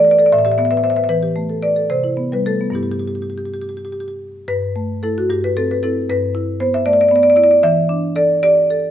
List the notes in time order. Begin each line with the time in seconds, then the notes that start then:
Already playing: E3 A4
0.04 B4 D5
0.11 D5
0.19 A4 D5
0.26 D5
0.32 A2 E5
0.39 E5
0.45 G4 E5
0.52 E5
0.58 B3 E5
0.65 E5
0.71 B4 E5
0.77 E5
0.83 C5 E5
0.90 E5
0.96 B4 E5
1.04 E5
1.09 E3 B4
1.23 G4
1.36 A3
1.49 A4
1.63 B4 D5
1.76 A4
1.90 C3 C5
2.04 E4
2.17 B3
2.32 G3 B4
2.46 A3 A4
2.61 B3
2.70 G2 B3 E4
2.75 G4
2.83 G4
2.91 G4
2.99 G4
3.08 G4
3.15 G4
3.22 G4
3.30 G4
3.38 G4
3.45 G4
3.54 G4
3.62 G4
3.69 G4
3.77 G4
3.85 G4
3.92 G4
4.00 G4
4.08 G4
4.48 G2 B4
4.76 A3
5.03 A3 E4 A4
5.18 F#4
5.30 G2 G4
5.44 B4
5.57 C4 A4
5.71 B4
5.83 C4 E4 A4
6.09 G2 B4
6.35 E4
6.60 B3 C5
6.74 E5
6.86 A3 D5
6.93 D5
7.01 D5
7.08 B3 D5
7.16 D5
7.23 D5
7.30 D5
7.36 E4 D5
7.44 D5
7.51 D5
7.63 E3 E5
7.89 D4
8.16 A4 D5
8.43 G4 D5
8.70 A4